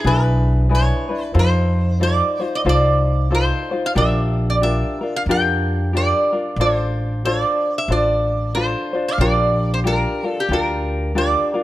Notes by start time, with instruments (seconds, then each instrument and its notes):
0.04 upright bass B1, ukulele D4 E4 G#4 B4, resonator guitar played with a steel bar B4
0.69 ukulele D4 E4 G#4 B4
0.75 resonator guitar played with a steel bar C#5
1.09 ukulele D4 E4 B4
1.24 resonator guitar played with a steel bar B4
1.34 upright bass F2, ukulele D#4 F4 A4 C5
1.39 resonator guitar played with a steel bar C5
2.00 ukulele D#4 F4 A4 C5, resonator guitar played with a steel bar D5
2.40 ukulele D#4 F4 C5
2.55 resonator guitar played with a steel bar D#5
2.65 upright bass C2, ukulele D#4 F4 A4 C5
2.69 resonator guitar played with a steel bar D5
3.31 ukulele D#4 F4 A4 C5
3.35 resonator guitar played with a steel bar C5
3.71 ukulele D#4 F4 C5
3.86 resonator guitar played with a steel bar F5
3.95 upright bass A#1, ukulele D4 F4 G4 A#4, resonator guitar played with a steel bar E5
4.50 resonator guitar played with a steel bar D5
4.61 ukulele D4 F4 G4 A#4, resonator guitar played with a steel bar E5
5.01 ukulele D4 F4 A#4
5.16 resonator guitar played with a steel bar F5
5.26 upright bass F2, ukulele D4 F4 G4
5.30 ukulele A#4, resonator guitar played with a steel bar G5
5.93 ukulele D4 F4 G4 A#4, resonator guitar played with a steel bar D5
6.32 ukulele D4 F4 A#4
6.56 upright bass A1, ukulele D4 F4 A4
6.61 ukulele C5, resonator guitar played with a steel bar C5
7.25 ukulele D4 F4 A4 C5, resonator guitar played with a steel bar C#5
7.42 resonator guitar played with a steel bar D5
7.78 resonator guitar played with a steel bar E5
7.88 upright bass A1, ukulele D4 F4 A4 C5, resonator guitar played with a steel bar D5
8.55 ukulele D4 F4 A4 C5, resonator guitar played with a steel bar C5
8.93 ukulele D4 F4 C5
9.08 resonator guitar played with a steel bar F5
9.18 upright bass A#1, ukulele D4 F4 G4 A#4, resonator guitar played with a steel bar D5
9.74 resonator guitar played with a steel bar C5
9.84 ukulele D4 F4 G4 A#4, resonator guitar played with a steel bar A#4
10.23 ukulele D4 F4 A#4, resonator guitar played with a steel bar A4
10.40 resonator guitar played with a steel bar G4
10.49 upright bass D2, ukulele D4 F4 G4 A#4
10.53 resonator guitar played with a steel bar A#4
11.15 ukulele D4 F4 G4 A#4, resonator guitar played with a steel bar D5
11.54 ukulele D4 F4 A#4